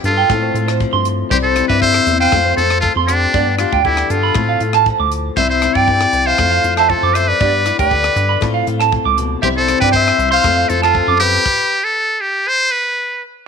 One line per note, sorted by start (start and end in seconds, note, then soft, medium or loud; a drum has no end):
0.00 0.25 G2 loud
0.00 0.26 B3 medium
0.00 0.27 D4 medium
0.00 0.26 G4 medium
0.04 0.30 G2 soft
0.04 0.77 F4 medium
0.04 0.77 A4 medium
0.04 closed hi-hat soft
0.17 0.29 G5 medium
0.29 1.31 A2 medium
0.29 0.50 A2 medium
0.29 1.28 A3 medium
0.29 0.54 C4 medium
0.29 kick medium
0.29 cross-stick medium
0.43 0.54 C5 medium
0.54 0.86 A2 medium
0.54 1.28 C4 medium
0.54 closed hi-hat soft
0.68 0.79 C5 medium
0.68 cross-stick medium
0.80 1.29 F3 medium
0.80 kick medium
0.93 1.24 G2 medium
0.93 1.04 C6 medium
1.05 closed hi-hat soft
1.30 1.63 C2 loud
1.30 2.30 C3 medium
1.30 2.33 G3 medium
1.30 2.31 C4 medium
1.30 1.56 E4 medium
1.30 1.37 G4 medium
1.30 1.38 C5 medium
1.30 muted clean electric guitar stroke medium
1.30 kick medium
1.43 1.67 A4 medium
1.43 1.68 C5 medium
1.56 2.33 E4 medium
1.56 cross-stick medium
1.56 closed hi-hat soft
1.68 2.00 G2 medium
1.68 1.80 B4 medium
1.68 1.80 D5 medium
1.68 1.81 E5 medium
1.68 kick medium
1.81 2.07 D3 medium
1.81 2.18 C5 loud
1.81 2.17 E5 loud
1.81 kick medium
1.94 cross-stick medium
2.07 2.27 E2 loud
2.07 muted steel-string acoustic guitar stroke medium
2.07 closed hi-hat soft
2.20 2.55 C5 loud
2.20 2.55 F5 medium
2.20 2.32 G5 medium
2.32 2.53 F2 loud
2.32 3.32 F2 medium
2.32 3.32 A3 medium
2.32 3.32 C4 medium
2.32 2.58 F4 medium
2.32 kick medium
2.32 cross-stick medium
2.46 2.57 C5 medium
2.56 2.89 F2 medium
2.56 3.32 F4 medium
2.56 2.80 A4 medium
2.56 2.80 C5 medium
2.56 closed hi-hat soft
2.70 cross-stick medium
2.81 3.31 F3 medium
2.81 2.93 F4 medium
2.81 2.93 A4 medium
2.81 kick medium
2.96 3.27 F2 medium
2.96 3.08 C6 medium
3.07 3.55 D4 loud
3.07 3.55 G4 medium
3.07 cross-stick medium
3.07 closed hi-hat medium
3.34 4.33 G2 medium
3.34 3.66 G2 loud
3.34 4.33 B3 medium
3.34 4.33 D4 medium
3.34 3.60 G4 medium
3.34 3.46 D5 medium
3.34 kick medium
3.58 3.82 D4 medium
3.58 3.82 F4 medium
3.58 4.33 G4 medium
3.58 cross-stick medium
3.58 closed hi-hat soft
3.73 4.03 D2 medium
3.73 3.84 G5 medium
3.73 kick medium
3.83 4.36 D3 medium
3.83 4.12 E4 medium
3.83 4.12 G4 medium
3.83 kick medium
3.97 cross-stick medium
4.10 4.31 G2 loud
4.10 4.86 F4 medium
4.10 4.86 A4 medium
4.10 closed hi-hat soft
4.23 4.35 B5 medium
4.35 5.36 A2 medium
4.35 4.56 A2 medium
4.35 5.34 A3 medium
4.35 4.61 C4 medium
4.35 kick medium
4.35 cross-stick medium
4.49 4.60 F5 medium
4.60 4.92 A2 medium
4.60 closed hi-hat soft
4.73 4.86 A5 medium
4.73 cross-stick medium
4.86 5.34 F3 medium
4.86 kick medium
4.99 5.30 D2 medium
4.99 5.11 D6 medium
5.12 closed hi-hat soft
5.36 5.68 C2 medium
5.36 5.88 C3 medium
5.36 6.39 G3 medium
5.36 6.36 C4 medium
5.36 5.63 E4 medium
5.36 5.49 C5 medium
5.36 5.49 E5 medium
5.36 5.50 E5 medium
5.36 kick medium
5.50 5.75 C5 medium
5.50 5.78 E5 medium
5.62 6.39 E4 medium
5.62 cross-stick medium
5.62 closed hi-hat soft
5.74 6.06 G2 medium
5.74 6.27 D5 loud
5.74 5.87 G5 medium
5.74 6.28 G5 medium
5.74 kick medium
5.88 6.36 E3 medium
5.88 kick medium
6.01 cross-stick medium
6.13 6.34 C2 loud
6.13 closed hi-hat soft
6.26 6.76 C5 medium
6.26 6.38 E5 medium
6.26 6.77 F5 medium
6.38 6.60 F2 medium
6.38 7.38 A3 medium
6.38 7.38 C4 medium
6.38 6.63 F4 medium
6.38 kick medium
6.38 cross-stick medium
6.51 6.63 F5 medium
6.64 6.95 F2 medium
6.64 7.37 F4 medium
6.64 closed hi-hat soft
6.76 6.91 C5 medium
6.76 6.92 E5 medium
6.76 6.89 A5 medium
6.76 cross-stick medium
6.89 7.38 F3 medium
6.89 7.15 A4 medium
6.89 7.17 C5 medium
6.89 kick medium
7.03 7.33 F#2 medium
7.03 7.14 D6 medium
7.14 7.29 C5 medium
7.14 7.30 E5 medium
7.14 cross-stick medium
7.14 closed hi-hat medium
7.28 7.78 B4 medium
7.28 7.79 D5 medium
7.40 7.72 G2 medium
7.40 8.39 B3 medium
7.40 8.40 D4 medium
7.40 7.65 G4 medium
7.40 7.53 D5 medium
7.40 muted steel-string acoustic guitar stroke medium
7.40 kick medium
7.66 7.79 E4 medium
7.66 cross-stick medium
7.66 closed hi-hat soft
7.79 8.09 D2 medium
7.79 8.42 G4 medium
7.79 8.51 B4 medium
7.79 8.51 D5 medium
7.79 7.90 G5 medium
7.79 kick medium
7.91 8.42 D3 medium
7.91 kick medium
8.04 cross-stick medium
8.16 8.37 G2 loud
8.16 closed hi-hat soft
8.29 8.40 B5 medium
8.41 8.91 A2 medium
8.41 8.63 A2 medium
8.41 9.40 A3 medium
8.41 9.41 C4 medium
8.41 8.65 F4 medium
8.41 kick medium
8.41 cross-stick medium
8.54 8.66 F5 medium
8.67 8.99 A2 medium
8.67 9.40 F4 medium
8.67 closed hi-hat soft
8.80 8.91 A5 medium
8.80 cross-stick medium
8.92 9.17 A2 medium
8.92 kick medium
9.05 9.36 C#2 medium
9.05 9.17 D6 medium
9.17 9.43 B2 medium
9.17 closed hi-hat soft
9.42 9.75 C2 medium
9.42 9.94 C3 medium
9.42 10.44 G3 medium
9.42 10.42 C4 medium
9.42 9.68 E4 medium
9.42 9.48 G4 medium
9.42 9.50 C5 medium
9.42 9.55 E5 medium
9.42 kick medium
9.57 9.80 A4 medium
9.57 9.80 C5 medium
9.68 10.45 E4 medium
9.68 cross-stick medium
9.68 closed hi-hat soft
9.80 10.12 G2 medium
9.80 9.92 B4 loud
9.80 9.93 D5 medium
9.80 9.92 G5 medium
9.80 kick medium
9.92 10.41 E3 medium
9.92 10.29 C5 loud
9.92 10.30 E5 medium
9.92 kick medium
10.08 cross-stick medium
10.19 10.39 C2 loud
10.19 closed hi-hat soft
10.31 10.70 C5 loud
10.31 10.71 F5 loud
10.31 10.43 C6 medium
10.44 10.65 F2 loud
10.44 11.43 A3 medium
10.44 11.43 C4 medium
10.44 10.68 F4 medium
10.44 kick medium
10.44 cross-stick medium
10.57 10.68 F5 medium
10.69 11.01 F2 medium
10.69 11.43 F4 medium
10.69 10.82 A4 medium
10.69 10.82 C5 medium
10.69 closed hi-hat soft
10.82 11.18 F4 medium
10.82 11.18 A4 medium
10.82 10.94 A5 medium
10.82 cross-stick medium
10.94 11.42 F3 medium
10.94 kick medium
11.08 11.38 F#2 medium
11.08 11.19 D6 medium
11.19 11.86 G4 loud
11.19 11.80 B4 medium
11.19 cross-stick medium
11.19 closed hi-hat soft
11.46 kick medium
11.46 crash medium
11.84 12.22 A4 medium
12.21 12.50 G4 medium
12.48 12.73 C5 loud
12.71 13.22 B4 medium